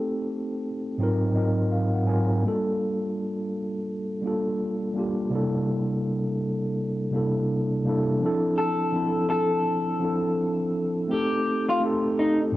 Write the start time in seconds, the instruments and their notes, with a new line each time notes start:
Already playing: tine electric piano A3 C4 D#4 G4 A4
0.98 tine electric piano G#2 F#3 C4 D#4
1.02 tine electric piano F4 A#4
1.32 tine electric piano G#2 F#3 C4 D#4 D#5
1.37 tine electric piano F4 A#4
1.72 tine electric piano F5
1.94 tine electric piano F#5
2.04 tine electric piano G#2 F#3 C4 D#4 G#5
2.09 tine electric piano F4 A#4
2.42 tine electric piano G3 A#3 D4
2.47 tine electric piano F4 A4
4.22 tine electric piano G3 A#3 D4
4.26 tine electric piano F4 A4
4.94 tine electric piano G3 A#3 D4
4.98 tine electric piano F4 G4
5.30 tine electric piano C3 G3 A#3 D4
5.34 tine electric piano E4 A4
7.11 tine electric piano C3 G3 A#3 D4
7.15 tine electric piano E4 A4
7.84 tine electric piano C3 G3 A#3 D4
7.88 tine electric piano E4 A4
8.20 tine electric piano F3 C4 D4
8.25 tine electric piano E4 A4
8.58 clean electric guitar A4
8.92 tine electric piano F3 C4 D4 E4
8.98 tine electric piano A4
9.30 clean electric guitar A4
9.99 tine electric piano F3 C4 D4
10.03 tine electric piano E4 A4
11.08 tine electric piano A3 C4 D#4, clean electric guitar G4
11.12 tine electric piano G4 A4
11.69 clean electric guitar F4
11.80 tine electric piano A3 C4 D#4
11.84 tine electric piano G4 A4
12.19 clean electric guitar D#4
12.51 tine electric piano G#2 F#3 C4